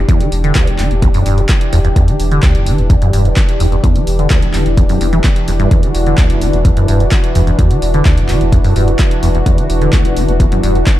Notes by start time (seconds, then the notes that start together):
Already playing: E3 D4 E4 G4 B4
0.09 E2, kick, closed hi-hat
0.20 E3, closed hi-hat
0.32 E1, open hi-hat
0.44 D3, closed hi-hat
0.55 D2, kick, clap, closed hi-hat
0.67 E1, closed hi-hat
0.79 E1 E3, clap, open hi-hat
0.91 E1 E2, closed hi-hat
1.02 E2, kick, closed hi-hat
1.14 F#2, open hi-hat
1.26 E1 G2, open hi-hat
1.38 E2, closed hi-hat
1.49 kick, clap, closed hi-hat
1.61 closed hi-hat
1.73 E1 E2, open hi-hat
1.85 E2, closed hi-hat
1.96 E2, kick, closed hi-hat
2.08 E3, closed hi-hat
2.20 E1, open hi-hat
2.31 D3, closed hi-hat
2.43 D2, kick, clap, closed hi-hat
2.55 E1, closed hi-hat
2.66 E1 E3, open hi-hat
2.78 E1 E2, closed hi-hat
2.90 E2, kick, closed hi-hat
3.02 F#2, closed hi-hat
3.13 E1 G2, open hi-hat
3.25 E2, closed hi-hat
3.36 kick, clap, closed hi-hat
3.49 closed hi-hat
3.60 E1 E2, open hi-hat
3.72 E2, closed hi-hat
3.84 E2, kick, closed hi-hat
3.96 E3, closed hi-hat
4.07 E1, open hi-hat
4.19 D3, closed hi-hat
4.30 D2, kick, clap, closed hi-hat
4.42 E1, closed hi-hat
4.54 E1 E3, clap, open hi-hat
4.66 E1 E2, closed hi-hat
4.77 E2, kick, closed hi-hat
4.89 F#2, open hi-hat
5.01 E1 E2, open hi-hat
5.13 E3, closed hi-hat
5.24 E2, kick, clap, closed hi-hat
5.36 closed hi-hat
5.48 E1 F#2, open hi-hat
5.60 G2, closed hi-hat
5.71 E2 F#4, kick, closed hi-hat
5.83 E3, closed hi-hat
5.95 E1, open hi-hat
6.06 D3, closed hi-hat
6.18 D2, kick, clap, closed hi-hat
6.30 E1, closed hi-hat
6.41 E1 E3, open hi-hat
6.53 E1 E2, closed hi-hat
6.65 E2, kick, closed hi-hat
6.77 F#2, closed hi-hat
6.88 E1 G2, open hi-hat
7.00 E2, closed hi-hat
7.11 kick, clap, closed hi-hat
7.24 closed hi-hat
7.35 E1 E2, open hi-hat
7.47 E2, closed hi-hat
7.59 E2, kick, closed hi-hat
7.71 E3, closed hi-hat
7.82 E1, open hi-hat
7.94 D3, closed hi-hat
8.05 D2, kick, clap, closed hi-hat
8.17 E1, closed hi-hat
8.29 E1 E3, clap, open hi-hat
8.41 E1 E2, closed hi-hat
8.52 E2, kick, closed hi-hat
8.64 F#2, open hi-hat
8.76 E1 G2, open hi-hat
8.88 E2, closed hi-hat
8.99 kick, clap, closed hi-hat
9.11 closed hi-hat
9.23 E1 E2, open hi-hat
9.35 E2, closed hi-hat
9.46 E2, kick, closed hi-hat
9.58 E3, closed hi-hat
9.70 E1, open hi-hat
9.81 D3, closed hi-hat
9.93 D2, kick, clap, closed hi-hat
10.05 E1, closed hi-hat
10.16 E1 E3, open hi-hat
10.28 E1 E2, closed hi-hat
10.40 E2, kick, closed hi-hat
10.52 F#2, closed hi-hat
10.63 E1 G2, open hi-hat
10.75 E2, closed hi-hat
10.86 kick, clap, closed hi-hat